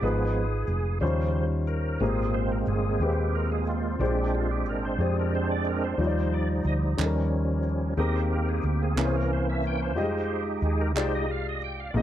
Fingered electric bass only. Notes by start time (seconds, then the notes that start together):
0.02 G#1
0.68 F1
1.01 D#2
2.00 G#1
2.67 G1
3.00 D#2
3.99 A#1
4.66 G#1
4.99 F2
5.98 D#2
6.65 D2
6.98 D#2
7.97 D#2
8.64 D2
8.96 C2
9.96 F2
10.62 D#2
10.95 C2
11.94 A#1